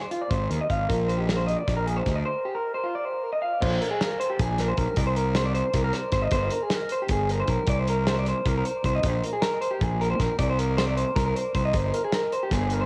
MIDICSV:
0, 0, Header, 1, 4, 480
1, 0, Start_track
1, 0, Tempo, 387597
1, 1111, Time_signature, 7, 3, 24, 8
1, 15923, End_track
2, 0, Start_track
2, 0, Title_t, "Clean electric guitar"
2, 0, Program_c, 0, 27
2, 16, Note_on_c, 0, 72, 65
2, 140, Note_on_c, 0, 65, 67
2, 142, Note_off_c, 0, 72, 0
2, 264, Note_off_c, 0, 65, 0
2, 267, Note_on_c, 0, 74, 66
2, 369, Note_off_c, 0, 74, 0
2, 369, Note_on_c, 0, 72, 74
2, 623, Note_off_c, 0, 72, 0
2, 623, Note_on_c, 0, 70, 70
2, 747, Note_off_c, 0, 70, 0
2, 760, Note_on_c, 0, 75, 67
2, 866, Note_off_c, 0, 75, 0
2, 870, Note_on_c, 0, 77, 68
2, 1099, Note_on_c, 0, 70, 77
2, 1112, Note_off_c, 0, 77, 0
2, 1337, Note_on_c, 0, 72, 65
2, 1347, Note_off_c, 0, 70, 0
2, 1455, Note_on_c, 0, 67, 66
2, 1465, Note_off_c, 0, 72, 0
2, 1573, Note_off_c, 0, 67, 0
2, 1573, Note_on_c, 0, 70, 77
2, 1690, Note_on_c, 0, 72, 67
2, 1704, Note_off_c, 0, 70, 0
2, 1812, Note_off_c, 0, 72, 0
2, 1817, Note_on_c, 0, 75, 69
2, 1940, Note_off_c, 0, 75, 0
2, 1940, Note_on_c, 0, 74, 65
2, 2180, Note_off_c, 0, 74, 0
2, 2185, Note_on_c, 0, 70, 63
2, 2306, Note_off_c, 0, 70, 0
2, 2306, Note_on_c, 0, 68, 69
2, 2432, Note_off_c, 0, 68, 0
2, 2432, Note_on_c, 0, 72, 68
2, 2667, Note_off_c, 0, 72, 0
2, 2667, Note_on_c, 0, 74, 60
2, 2785, Note_off_c, 0, 74, 0
2, 2790, Note_on_c, 0, 72, 75
2, 3033, Note_on_c, 0, 67, 67
2, 3036, Note_off_c, 0, 72, 0
2, 3153, Note_on_c, 0, 70, 68
2, 3157, Note_off_c, 0, 67, 0
2, 3391, Note_off_c, 0, 70, 0
2, 3396, Note_on_c, 0, 72, 62
2, 3510, Note_on_c, 0, 65, 66
2, 3519, Note_off_c, 0, 72, 0
2, 3636, Note_off_c, 0, 65, 0
2, 3652, Note_on_c, 0, 74, 66
2, 3776, Note_off_c, 0, 74, 0
2, 3776, Note_on_c, 0, 72, 68
2, 4004, Note_off_c, 0, 72, 0
2, 4004, Note_on_c, 0, 70, 68
2, 4113, Note_off_c, 0, 70, 0
2, 4118, Note_on_c, 0, 75, 63
2, 4229, Note_off_c, 0, 75, 0
2, 4234, Note_on_c, 0, 77, 64
2, 4475, Note_on_c, 0, 72, 87
2, 4479, Note_off_c, 0, 77, 0
2, 4716, Note_off_c, 0, 72, 0
2, 4716, Note_on_c, 0, 70, 75
2, 4835, Note_off_c, 0, 70, 0
2, 4840, Note_on_c, 0, 68, 71
2, 4957, Note_off_c, 0, 68, 0
2, 4957, Note_on_c, 0, 70, 80
2, 5199, Note_on_c, 0, 72, 77
2, 5200, Note_off_c, 0, 70, 0
2, 5321, Note_off_c, 0, 72, 0
2, 5322, Note_on_c, 0, 67, 76
2, 5451, Note_off_c, 0, 67, 0
2, 5451, Note_on_c, 0, 68, 73
2, 5697, Note_off_c, 0, 68, 0
2, 5697, Note_on_c, 0, 70, 70
2, 5800, Note_on_c, 0, 72, 71
2, 5810, Note_off_c, 0, 70, 0
2, 5910, Note_off_c, 0, 72, 0
2, 5910, Note_on_c, 0, 70, 75
2, 6153, Note_off_c, 0, 70, 0
2, 6153, Note_on_c, 0, 74, 87
2, 6271, Note_off_c, 0, 74, 0
2, 6276, Note_on_c, 0, 72, 70
2, 6395, Note_off_c, 0, 72, 0
2, 6395, Note_on_c, 0, 70, 70
2, 6633, Note_off_c, 0, 70, 0
2, 6638, Note_on_c, 0, 72, 84
2, 6751, Note_off_c, 0, 72, 0
2, 6756, Note_on_c, 0, 74, 68
2, 6860, Note_off_c, 0, 74, 0
2, 6865, Note_on_c, 0, 72, 76
2, 7115, Note_off_c, 0, 72, 0
2, 7115, Note_on_c, 0, 70, 79
2, 7220, Note_off_c, 0, 70, 0
2, 7235, Note_on_c, 0, 70, 69
2, 7347, Note_off_c, 0, 70, 0
2, 7347, Note_on_c, 0, 72, 73
2, 7571, Note_off_c, 0, 72, 0
2, 7586, Note_on_c, 0, 72, 73
2, 7704, Note_off_c, 0, 72, 0
2, 7704, Note_on_c, 0, 75, 66
2, 7827, Note_off_c, 0, 75, 0
2, 7832, Note_on_c, 0, 72, 86
2, 8065, Note_on_c, 0, 70, 70
2, 8075, Note_off_c, 0, 72, 0
2, 8204, Note_off_c, 0, 70, 0
2, 8204, Note_on_c, 0, 68, 70
2, 8338, Note_off_c, 0, 68, 0
2, 8338, Note_on_c, 0, 70, 84
2, 8568, Note_off_c, 0, 70, 0
2, 8572, Note_on_c, 0, 72, 79
2, 8685, Note_off_c, 0, 72, 0
2, 8694, Note_on_c, 0, 67, 71
2, 8806, Note_off_c, 0, 67, 0
2, 8813, Note_on_c, 0, 68, 74
2, 9046, Note_off_c, 0, 68, 0
2, 9046, Note_on_c, 0, 70, 76
2, 9161, Note_off_c, 0, 70, 0
2, 9167, Note_on_c, 0, 72, 71
2, 9279, Note_off_c, 0, 72, 0
2, 9279, Note_on_c, 0, 70, 74
2, 9517, Note_off_c, 0, 70, 0
2, 9530, Note_on_c, 0, 74, 92
2, 9652, Note_off_c, 0, 74, 0
2, 9652, Note_on_c, 0, 72, 76
2, 9764, Note_off_c, 0, 72, 0
2, 9777, Note_on_c, 0, 70, 74
2, 10006, Note_off_c, 0, 70, 0
2, 10015, Note_on_c, 0, 72, 84
2, 10125, Note_off_c, 0, 72, 0
2, 10139, Note_on_c, 0, 74, 69
2, 10247, Note_off_c, 0, 74, 0
2, 10260, Note_on_c, 0, 72, 72
2, 10482, Note_off_c, 0, 72, 0
2, 10482, Note_on_c, 0, 70, 74
2, 10598, Note_off_c, 0, 70, 0
2, 10622, Note_on_c, 0, 70, 63
2, 10711, Note_off_c, 0, 70, 0
2, 10711, Note_on_c, 0, 72, 75
2, 10952, Note_off_c, 0, 72, 0
2, 10966, Note_on_c, 0, 72, 74
2, 11079, Note_off_c, 0, 72, 0
2, 11090, Note_on_c, 0, 75, 65
2, 11204, Note_off_c, 0, 75, 0
2, 11204, Note_on_c, 0, 72, 81
2, 11441, Note_off_c, 0, 72, 0
2, 11441, Note_on_c, 0, 70, 69
2, 11553, Note_on_c, 0, 68, 66
2, 11556, Note_off_c, 0, 70, 0
2, 11662, Note_on_c, 0, 70, 87
2, 11672, Note_off_c, 0, 68, 0
2, 11897, Note_off_c, 0, 70, 0
2, 11902, Note_on_c, 0, 72, 73
2, 12021, Note_on_c, 0, 67, 76
2, 12026, Note_off_c, 0, 72, 0
2, 12166, Note_off_c, 0, 67, 0
2, 12166, Note_on_c, 0, 68, 78
2, 12397, Note_off_c, 0, 68, 0
2, 12397, Note_on_c, 0, 70, 70
2, 12506, Note_off_c, 0, 70, 0
2, 12511, Note_on_c, 0, 72, 70
2, 12634, Note_off_c, 0, 72, 0
2, 12634, Note_on_c, 0, 70, 72
2, 12857, Note_off_c, 0, 70, 0
2, 12862, Note_on_c, 0, 74, 93
2, 12985, Note_off_c, 0, 74, 0
2, 12998, Note_on_c, 0, 72, 68
2, 13110, Note_off_c, 0, 72, 0
2, 13110, Note_on_c, 0, 70, 70
2, 13335, Note_off_c, 0, 70, 0
2, 13340, Note_on_c, 0, 72, 77
2, 13451, Note_off_c, 0, 72, 0
2, 13456, Note_on_c, 0, 74, 69
2, 13579, Note_off_c, 0, 74, 0
2, 13584, Note_on_c, 0, 72, 69
2, 13811, Note_off_c, 0, 72, 0
2, 13816, Note_on_c, 0, 70, 78
2, 13929, Note_off_c, 0, 70, 0
2, 13943, Note_on_c, 0, 70, 75
2, 14062, Note_off_c, 0, 70, 0
2, 14062, Note_on_c, 0, 72, 71
2, 14286, Note_off_c, 0, 72, 0
2, 14301, Note_on_c, 0, 72, 69
2, 14423, Note_off_c, 0, 72, 0
2, 14429, Note_on_c, 0, 75, 72
2, 14548, Note_off_c, 0, 75, 0
2, 14548, Note_on_c, 0, 72, 90
2, 14782, Note_on_c, 0, 70, 73
2, 14787, Note_off_c, 0, 72, 0
2, 14903, Note_off_c, 0, 70, 0
2, 14916, Note_on_c, 0, 68, 71
2, 15028, Note_off_c, 0, 68, 0
2, 15033, Note_on_c, 0, 70, 85
2, 15266, Note_on_c, 0, 72, 73
2, 15268, Note_off_c, 0, 70, 0
2, 15385, Note_off_c, 0, 72, 0
2, 15392, Note_on_c, 0, 67, 76
2, 15508, Note_off_c, 0, 67, 0
2, 15508, Note_on_c, 0, 68, 79
2, 15760, Note_off_c, 0, 68, 0
2, 15760, Note_on_c, 0, 70, 76
2, 15862, Note_on_c, 0, 72, 69
2, 15872, Note_off_c, 0, 70, 0
2, 15923, Note_off_c, 0, 72, 0
2, 15923, End_track
3, 0, Start_track
3, 0, Title_t, "Fingered electric bass"
3, 0, Program_c, 1, 33
3, 378, Note_on_c, 1, 32, 82
3, 581, Note_off_c, 1, 32, 0
3, 626, Note_on_c, 1, 39, 79
3, 726, Note_off_c, 1, 39, 0
3, 864, Note_on_c, 1, 32, 78
3, 1065, Note_off_c, 1, 32, 0
3, 1110, Note_on_c, 1, 34, 100
3, 1906, Note_off_c, 1, 34, 0
3, 2070, Note_on_c, 1, 34, 88
3, 2470, Note_off_c, 1, 34, 0
3, 2552, Note_on_c, 1, 38, 81
3, 2753, Note_off_c, 1, 38, 0
3, 4487, Note_on_c, 1, 34, 90
3, 4684, Note_off_c, 1, 34, 0
3, 5441, Note_on_c, 1, 34, 92
3, 5837, Note_off_c, 1, 34, 0
3, 5922, Note_on_c, 1, 35, 91
3, 6021, Note_off_c, 1, 35, 0
3, 6153, Note_on_c, 1, 36, 93
3, 6947, Note_off_c, 1, 36, 0
3, 7107, Note_on_c, 1, 36, 93
3, 7310, Note_off_c, 1, 36, 0
3, 7582, Note_on_c, 1, 32, 91
3, 7787, Note_off_c, 1, 32, 0
3, 7820, Note_on_c, 1, 31, 97
3, 8026, Note_off_c, 1, 31, 0
3, 8784, Note_on_c, 1, 31, 90
3, 9185, Note_off_c, 1, 31, 0
3, 9264, Note_on_c, 1, 35, 84
3, 9368, Note_off_c, 1, 35, 0
3, 9502, Note_on_c, 1, 36, 100
3, 10297, Note_off_c, 1, 36, 0
3, 10471, Note_on_c, 1, 36, 88
3, 10670, Note_off_c, 1, 36, 0
3, 10954, Note_on_c, 1, 36, 83
3, 11151, Note_off_c, 1, 36, 0
3, 11191, Note_on_c, 1, 34, 91
3, 11389, Note_off_c, 1, 34, 0
3, 12150, Note_on_c, 1, 34, 87
3, 12545, Note_off_c, 1, 34, 0
3, 12626, Note_on_c, 1, 34, 80
3, 12726, Note_off_c, 1, 34, 0
3, 12866, Note_on_c, 1, 36, 92
3, 13657, Note_off_c, 1, 36, 0
3, 13820, Note_on_c, 1, 36, 95
3, 14020, Note_off_c, 1, 36, 0
3, 14302, Note_on_c, 1, 36, 83
3, 14501, Note_off_c, 1, 36, 0
3, 14541, Note_on_c, 1, 31, 95
3, 14740, Note_off_c, 1, 31, 0
3, 15499, Note_on_c, 1, 31, 88
3, 15896, Note_off_c, 1, 31, 0
3, 15923, End_track
4, 0, Start_track
4, 0, Title_t, "Drums"
4, 140, Note_on_c, 9, 42, 55
4, 264, Note_off_c, 9, 42, 0
4, 381, Note_on_c, 9, 36, 94
4, 382, Note_on_c, 9, 42, 78
4, 505, Note_off_c, 9, 36, 0
4, 506, Note_off_c, 9, 42, 0
4, 629, Note_on_c, 9, 42, 61
4, 753, Note_off_c, 9, 42, 0
4, 865, Note_on_c, 9, 36, 73
4, 872, Note_on_c, 9, 42, 62
4, 989, Note_off_c, 9, 36, 0
4, 996, Note_off_c, 9, 42, 0
4, 1110, Note_on_c, 9, 36, 94
4, 1120, Note_on_c, 9, 42, 84
4, 1234, Note_off_c, 9, 36, 0
4, 1244, Note_off_c, 9, 42, 0
4, 1353, Note_on_c, 9, 42, 60
4, 1477, Note_off_c, 9, 42, 0
4, 1594, Note_on_c, 9, 42, 74
4, 1595, Note_on_c, 9, 38, 100
4, 1718, Note_off_c, 9, 42, 0
4, 1719, Note_off_c, 9, 38, 0
4, 1836, Note_on_c, 9, 42, 53
4, 1960, Note_off_c, 9, 42, 0
4, 2075, Note_on_c, 9, 36, 93
4, 2078, Note_on_c, 9, 42, 74
4, 2079, Note_on_c, 9, 38, 32
4, 2199, Note_off_c, 9, 36, 0
4, 2202, Note_off_c, 9, 42, 0
4, 2203, Note_off_c, 9, 38, 0
4, 2319, Note_on_c, 9, 42, 57
4, 2443, Note_off_c, 9, 42, 0
4, 2549, Note_on_c, 9, 42, 54
4, 2550, Note_on_c, 9, 38, 30
4, 2552, Note_on_c, 9, 36, 78
4, 2673, Note_off_c, 9, 42, 0
4, 2674, Note_off_c, 9, 38, 0
4, 2676, Note_off_c, 9, 36, 0
4, 4484, Note_on_c, 9, 49, 107
4, 4485, Note_on_c, 9, 36, 115
4, 4608, Note_off_c, 9, 49, 0
4, 4609, Note_off_c, 9, 36, 0
4, 4727, Note_on_c, 9, 42, 73
4, 4851, Note_off_c, 9, 42, 0
4, 4965, Note_on_c, 9, 42, 90
4, 4966, Note_on_c, 9, 38, 114
4, 5089, Note_off_c, 9, 42, 0
4, 5090, Note_off_c, 9, 38, 0
4, 5212, Note_on_c, 9, 42, 66
4, 5336, Note_off_c, 9, 42, 0
4, 5442, Note_on_c, 9, 42, 91
4, 5444, Note_on_c, 9, 36, 105
4, 5566, Note_off_c, 9, 42, 0
4, 5567, Note_off_c, 9, 36, 0
4, 5677, Note_on_c, 9, 42, 67
4, 5678, Note_on_c, 9, 38, 36
4, 5801, Note_off_c, 9, 42, 0
4, 5802, Note_off_c, 9, 38, 0
4, 5912, Note_on_c, 9, 42, 70
4, 5917, Note_on_c, 9, 36, 82
4, 6036, Note_off_c, 9, 42, 0
4, 6040, Note_off_c, 9, 36, 0
4, 6145, Note_on_c, 9, 42, 90
4, 6154, Note_on_c, 9, 36, 110
4, 6269, Note_off_c, 9, 42, 0
4, 6278, Note_off_c, 9, 36, 0
4, 6393, Note_on_c, 9, 42, 64
4, 6516, Note_off_c, 9, 42, 0
4, 6622, Note_on_c, 9, 42, 88
4, 6623, Note_on_c, 9, 38, 107
4, 6746, Note_off_c, 9, 42, 0
4, 6747, Note_off_c, 9, 38, 0
4, 6872, Note_on_c, 9, 42, 62
4, 6996, Note_off_c, 9, 42, 0
4, 7103, Note_on_c, 9, 42, 92
4, 7104, Note_on_c, 9, 38, 36
4, 7107, Note_on_c, 9, 36, 103
4, 7227, Note_off_c, 9, 42, 0
4, 7228, Note_off_c, 9, 38, 0
4, 7231, Note_off_c, 9, 36, 0
4, 7345, Note_on_c, 9, 42, 70
4, 7346, Note_on_c, 9, 38, 35
4, 7469, Note_off_c, 9, 42, 0
4, 7470, Note_off_c, 9, 38, 0
4, 7577, Note_on_c, 9, 42, 71
4, 7578, Note_on_c, 9, 38, 34
4, 7583, Note_on_c, 9, 36, 82
4, 7701, Note_off_c, 9, 42, 0
4, 7702, Note_off_c, 9, 38, 0
4, 7707, Note_off_c, 9, 36, 0
4, 7813, Note_on_c, 9, 42, 99
4, 7822, Note_on_c, 9, 36, 105
4, 7936, Note_off_c, 9, 42, 0
4, 7946, Note_off_c, 9, 36, 0
4, 8055, Note_on_c, 9, 42, 73
4, 8179, Note_off_c, 9, 42, 0
4, 8298, Note_on_c, 9, 42, 99
4, 8299, Note_on_c, 9, 38, 105
4, 8422, Note_off_c, 9, 42, 0
4, 8423, Note_off_c, 9, 38, 0
4, 8535, Note_on_c, 9, 42, 66
4, 8659, Note_off_c, 9, 42, 0
4, 8775, Note_on_c, 9, 42, 96
4, 8783, Note_on_c, 9, 36, 107
4, 8898, Note_off_c, 9, 42, 0
4, 8907, Note_off_c, 9, 36, 0
4, 9031, Note_on_c, 9, 42, 70
4, 9155, Note_off_c, 9, 42, 0
4, 9258, Note_on_c, 9, 42, 71
4, 9264, Note_on_c, 9, 36, 83
4, 9382, Note_off_c, 9, 42, 0
4, 9387, Note_off_c, 9, 36, 0
4, 9494, Note_on_c, 9, 42, 98
4, 9504, Note_on_c, 9, 36, 104
4, 9618, Note_off_c, 9, 42, 0
4, 9627, Note_off_c, 9, 36, 0
4, 9751, Note_on_c, 9, 42, 72
4, 9875, Note_off_c, 9, 42, 0
4, 9989, Note_on_c, 9, 42, 83
4, 9991, Note_on_c, 9, 38, 110
4, 10113, Note_off_c, 9, 42, 0
4, 10115, Note_off_c, 9, 38, 0
4, 10231, Note_on_c, 9, 42, 66
4, 10355, Note_off_c, 9, 42, 0
4, 10472, Note_on_c, 9, 36, 107
4, 10479, Note_on_c, 9, 42, 93
4, 10595, Note_off_c, 9, 36, 0
4, 10603, Note_off_c, 9, 42, 0
4, 10714, Note_on_c, 9, 42, 68
4, 10838, Note_off_c, 9, 42, 0
4, 10950, Note_on_c, 9, 36, 75
4, 10956, Note_on_c, 9, 42, 65
4, 11074, Note_off_c, 9, 36, 0
4, 11080, Note_off_c, 9, 42, 0
4, 11185, Note_on_c, 9, 42, 93
4, 11190, Note_on_c, 9, 36, 113
4, 11309, Note_off_c, 9, 42, 0
4, 11314, Note_off_c, 9, 36, 0
4, 11437, Note_on_c, 9, 42, 73
4, 11561, Note_off_c, 9, 42, 0
4, 11666, Note_on_c, 9, 42, 88
4, 11667, Note_on_c, 9, 38, 116
4, 11790, Note_off_c, 9, 42, 0
4, 11791, Note_off_c, 9, 38, 0
4, 11910, Note_on_c, 9, 42, 62
4, 12034, Note_off_c, 9, 42, 0
4, 12153, Note_on_c, 9, 36, 107
4, 12163, Note_on_c, 9, 42, 97
4, 12276, Note_off_c, 9, 36, 0
4, 12287, Note_off_c, 9, 42, 0
4, 12399, Note_on_c, 9, 42, 70
4, 12523, Note_off_c, 9, 42, 0
4, 12630, Note_on_c, 9, 36, 76
4, 12631, Note_on_c, 9, 42, 75
4, 12633, Note_on_c, 9, 38, 36
4, 12754, Note_off_c, 9, 36, 0
4, 12755, Note_off_c, 9, 42, 0
4, 12757, Note_off_c, 9, 38, 0
4, 12863, Note_on_c, 9, 42, 92
4, 12866, Note_on_c, 9, 36, 110
4, 12987, Note_off_c, 9, 42, 0
4, 12990, Note_off_c, 9, 36, 0
4, 13114, Note_on_c, 9, 42, 77
4, 13237, Note_off_c, 9, 42, 0
4, 13352, Note_on_c, 9, 42, 99
4, 13353, Note_on_c, 9, 38, 113
4, 13476, Note_off_c, 9, 42, 0
4, 13477, Note_off_c, 9, 38, 0
4, 13591, Note_on_c, 9, 42, 64
4, 13715, Note_off_c, 9, 42, 0
4, 13824, Note_on_c, 9, 36, 106
4, 13827, Note_on_c, 9, 42, 94
4, 13828, Note_on_c, 9, 38, 35
4, 13948, Note_off_c, 9, 36, 0
4, 13950, Note_off_c, 9, 42, 0
4, 13952, Note_off_c, 9, 38, 0
4, 14073, Note_on_c, 9, 42, 67
4, 14197, Note_off_c, 9, 42, 0
4, 14299, Note_on_c, 9, 42, 72
4, 14300, Note_on_c, 9, 36, 81
4, 14423, Note_off_c, 9, 42, 0
4, 14424, Note_off_c, 9, 36, 0
4, 14531, Note_on_c, 9, 42, 91
4, 14537, Note_on_c, 9, 36, 110
4, 14655, Note_off_c, 9, 42, 0
4, 14661, Note_off_c, 9, 36, 0
4, 14784, Note_on_c, 9, 42, 66
4, 14908, Note_off_c, 9, 42, 0
4, 15014, Note_on_c, 9, 42, 87
4, 15015, Note_on_c, 9, 38, 112
4, 15138, Note_off_c, 9, 42, 0
4, 15139, Note_off_c, 9, 38, 0
4, 15262, Note_on_c, 9, 42, 57
4, 15386, Note_off_c, 9, 42, 0
4, 15496, Note_on_c, 9, 36, 104
4, 15503, Note_on_c, 9, 42, 91
4, 15504, Note_on_c, 9, 38, 34
4, 15620, Note_off_c, 9, 36, 0
4, 15626, Note_off_c, 9, 42, 0
4, 15628, Note_off_c, 9, 38, 0
4, 15729, Note_on_c, 9, 42, 68
4, 15853, Note_off_c, 9, 42, 0
4, 15923, End_track
0, 0, End_of_file